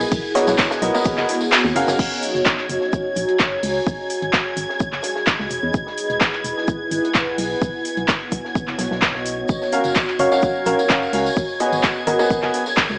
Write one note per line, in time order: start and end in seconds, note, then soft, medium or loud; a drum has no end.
0.00 0.12 E4 medium
0.00 0.87 G#4 medium
0.00 0.87 F#5 medium
0.00 0.78 G#5 medium
0.00 1.98 G#6 medium
0.00 tambourine medium
0.12 0.20 B1 loud
0.12 1.99 B3 medium
0.12 kick loud
0.12 ride medium
0.12 tambourine medium
0.12 shaker medium
0.25 tambourine soft
0.30 4.53 F#4 medium
0.35 0.79 B3 medium
0.35 0.79 F#4 medium
0.35 0.79 A#4 medium
0.35 0.43 C#5 medium
0.35 0.79 D#5 loud
0.35 snare loud
0.35 open hi-hat loud
0.35 shaker medium
0.47 0.55 B1 medium
0.47 0.55 C#5 medium
0.47 snare loud
0.47 tambourine medium
0.47 shaker medium
0.58 kick loud
0.58 snare loud
0.58 clap loud
0.58 ride medium
0.58 tambourine medium
0.58 shaker medium
0.71 snare loud
0.71 tambourine soft
0.71 shaker medium
0.77 2.74 D#5 medium
0.82 0.91 B1 loud
0.82 0.93 B3 medium
0.82 0.93 F#4 medium
0.82 0.93 A#4 medium
0.82 0.93 D#5 medium
0.82 open hi-hat loud
0.82 shaker medium
0.94 1.15 B3 loud
0.94 1.15 F#4 medium
0.94 1.15 A#4 medium
0.94 4.53 C#5 medium
0.94 1.15 D#5 loud
0.94 snare soft
0.94 tambourine medium
1.05 kick loud
1.05 ride medium
1.05 tambourine medium
1.05 shaker loud
1.17 1.26 F#1 medium
1.17 1.36 B3 medium
1.17 1.36 F#4 medium
1.17 1.36 A#4 medium
1.17 1.36 D#5 medium
1.17 clap soft
1.17 tambourine soft
1.28 snare medium
1.28 open hi-hat loud
1.28 shaker medium
1.41 snare soft
1.41 tambourine medium
1.52 snare loud
1.52 clap loud
1.52 ride medium
1.52 tambourine medium
1.52 shaker medium
1.65 1.72 D#2 loud
1.65 tambourine soft
1.76 1.84 F#1 loud
1.76 2.20 C#4 loud
1.76 2.20 F#4 loud
1.76 2.20 A#4 loud
1.76 2.20 F5 loud
1.76 open hi-hat loud
1.76 open hi-hat medium
1.88 1.96 F#1 medium
1.88 snare loud
1.88 tambourine medium
1.88 shaker medium
1.99 2.08 F#1 loud
1.99 9.48 G#6 medium
1.99 kick loud
1.99 crash loud
1.99 shaker medium
2.11 snare soft
2.16 4.53 G#5 medium
2.22 open hi-hat loud
2.22 shaker medium
2.35 2.43 F#1 medium
2.35 closed hi-hat soft
2.46 kick loud
2.46 snare loud
2.46 clap loud
2.46 shaker medium
2.58 clap soft
2.69 2.78 F#1 loud
2.69 open hi-hat loud
2.69 shaker medium
2.81 snare soft
2.93 kick loud
2.93 shaker medium
3.16 3.25 A#1 loud
3.16 open hi-hat loud
3.16 shaker medium
3.28 closed hi-hat soft
3.39 3.57 F#1 loud
3.39 kick loud
3.39 snare loud
3.39 clap loud
3.39 shaker medium
3.63 3.80 C#2 loud
3.63 open hi-hat medium
3.63 open hi-hat loud
3.87 3.95 G#1 loud
3.87 6.36 G#4 medium
3.87 kick loud
3.87 shaker medium
4.10 open hi-hat loud
4.10 shaker medium
4.22 4.30 G#1 medium
4.22 closed hi-hat soft
4.33 kick loud
4.33 snare loud
4.33 clap loud
4.33 shaker medium
4.50 6.36 D#5 medium
4.57 4.66 G#1 loud
4.57 6.36 B5 medium
4.57 open hi-hat loud
4.57 shaker medium
4.69 snare soft
4.80 kick loud
4.80 shaker medium
4.92 5.01 F#1 medium
4.92 clap soft
5.03 snare medium
5.03 open hi-hat loud
5.03 shaker medium
5.16 snare soft
5.27 kick loud
5.27 snare loud
5.27 clap loud
5.27 shaker medium
5.40 5.47 C#2 loud
5.40 snare medium
5.50 5.59 E1 medium
5.50 7.62 E4 medium
5.50 open hi-hat loud
5.50 shaker medium
5.61 5.71 E2 medium
5.61 8.37 B4 medium
5.74 5.83 E1 medium
5.74 kick loud
5.74 shaker medium
5.87 snare soft
5.98 8.37 G#5 medium
5.98 open hi-hat loud
5.98 shaker medium
6.10 6.18 E1 medium
6.10 closed hi-hat soft
6.21 kick loud
6.21 snare loud
6.21 clap loud
6.21 shaker medium
6.32 8.37 F#5 medium
6.32 clap soft
6.44 6.53 E1 medium
6.44 open hi-hat loud
6.44 shaker medium
6.58 snare soft
6.68 kick loud
6.68 shaker medium
6.91 7.00 G#1 medium
6.91 open hi-hat loud
6.91 shaker medium
7.05 closed hi-hat soft
7.14 7.32 E1 loud
7.14 kick loud
7.14 snare loud
7.14 clap loud
7.14 shaker medium
7.38 7.55 B1 loud
7.38 open hi-hat loud
7.38 open hi-hat medium
7.62 7.70 B1 loud
7.62 9.49 B3 medium
7.62 kick loud
7.62 shaker medium
7.71 12.03 F#4 medium
7.85 open hi-hat loud
7.85 shaker medium
7.97 8.05 B1 medium
7.97 12.03 C#5 medium
7.97 closed hi-hat soft
8.08 kick loud
8.08 snare loud
8.08 clap loud
8.08 shaker medium
8.19 10.24 D#5 medium
8.31 8.41 B1 loud
8.31 kick medium
8.31 open hi-hat loud
8.31 shaker medium
8.45 snare soft
8.55 kick loud
8.55 shaker medium
8.67 8.76 F#1 medium
8.67 clap soft
8.79 8.88 B1 loud
8.79 snare medium
8.79 open hi-hat loud
8.79 shaker medium
8.91 9.44 B1 loud
8.91 snare medium
9.02 kick loud
9.02 snare loud
9.02 clap loud
9.02 shaker medium
9.15 snare soft
9.26 open hi-hat loud
9.26 shaker medium
9.49 9.58 F#1 loud
9.49 12.98 G#6 medium
9.49 kick loud
9.49 tambourine medium
9.49 shaker medium
9.62 snare soft
9.62 tambourine soft
9.73 9.92 C#4 medium
9.73 9.92 F#4 medium
9.73 9.92 A#4 medium
9.73 9.92 F5 medium
9.73 open hi-hat loud
9.73 shaker medium
9.84 9.93 F#1 medium
9.84 closed hi-hat soft
9.84 tambourine medium
9.96 kick loud
9.96 snare loud
9.96 clap loud
9.96 tambourine medium
9.96 shaker medium
10.08 clap soft
10.08 tambourine soft
10.17 10.28 F#1 medium
10.17 10.30 C#4 medium
10.17 10.30 F#4 medium
10.17 10.30 A#4 medium
10.17 10.27 C#5 medium
10.17 10.30 F5 loud
10.17 12.03 G#5 medium
10.17 open hi-hat loud
10.17 shaker medium
10.32 10.64 C#4 medium
10.32 10.64 F#4 medium
10.32 10.64 A#4 medium
10.32 10.39 C#5 medium
10.32 10.64 F5 medium
10.32 snare soft
10.32 tambourine medium
10.42 kick loud
10.42 tambourine medium
10.42 shaker medium
10.55 tambourine soft
10.66 10.75 A#1 medium
10.66 10.79 C#4 medium
10.66 10.79 F#4 medium
10.66 10.83 A#4 loud
10.66 10.79 A#4 medium
10.66 10.79 F5 loud
10.66 open hi-hat loud
10.66 shaker medium
10.79 closed hi-hat soft
10.79 tambourine medium
10.89 11.07 F#1 loud
10.89 11.11 C#4 loud
10.89 11.11 F#4 medium
10.89 11.11 A#4 medium
10.89 11.11 F5 loud
10.89 kick loud
10.89 snare loud
10.89 clap loud
10.89 tambourine medium
10.89 shaker medium
11.03 tambourine soft
11.13 11.30 C#2 loud
11.13 11.26 C#4 medium
11.13 11.26 F#4 medium
11.13 11.26 A#4 medium
11.13 11.26 F5 medium
11.13 open hi-hat loud
11.13 open hi-hat medium
11.26 tambourine medium
11.36 11.45 G#1 loud
11.36 12.98 G#4 medium
11.36 kick loud
11.36 tambourine medium
11.36 shaker medium
11.49 tambourine soft
11.60 12.04 B3 medium
11.60 12.04 F#4 medium
11.60 12.04 G#4 medium
11.60 12.04 D#5 loud
11.60 open hi-hat medium
11.60 shaker medium
11.72 11.80 G#1 medium
11.72 closed hi-hat soft
11.72 tambourine medium
11.83 kick loud
11.83 snare loud
11.83 clap loud
11.83 tambourine medium
11.83 shaker medium
11.95 tambourine soft
12.02 12.98 D#5 medium
12.07 12.16 G#1 medium
12.07 12.18 B3 medium
12.07 12.18 F#4 medium
12.07 12.18 G#4 medium
12.07 12.15 A#4 medium
12.07 12.18 D#5 medium
12.07 12.98 B5 medium
12.07 open hi-hat loud
12.07 shaker medium
12.19 12.40 B3 medium
12.19 12.40 F#4 medium
12.19 12.40 G#4 medium
12.19 12.26 A#4 medium
12.19 12.40 D#5 loud
12.19 snare soft
12.19 tambourine medium
12.30 kick loud
12.30 tambourine medium
12.30 shaker medium
12.42 12.51 F#1 medium
12.42 12.61 B3 medium
12.42 12.61 F#4 medium
12.42 12.61 G#4 medium
12.42 12.61 D#5 medium
12.42 clap soft
12.42 tambourine soft
12.54 snare medium
12.54 open hi-hat loud
12.54 shaker medium
12.66 snare soft
12.66 tambourine medium
12.77 kick loud
12.77 snare loud
12.77 clap loud
12.77 tambourine medium
12.77 shaker medium
12.89 12.97 C#2 loud
12.89 snare soft
12.89 tambourine soft